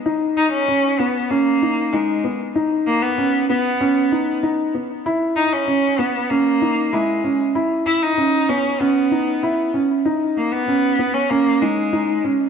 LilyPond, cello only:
\new Staff \with { instrumentName = "Cello" } { \time 4/4 \key b \major \tempo 4 = 96 r8 dis'16 cis'8. b8 ais4 gis8. r16 | r8 ais16 b8. b4. r4 | r8 dis'16 cis'8. b8 ais4 gis8. r16 | r8 e'16 dis'8. cis'8 b4. r8 |
r8 ais16 b4 cis'16 ais8 gis4 r8 | }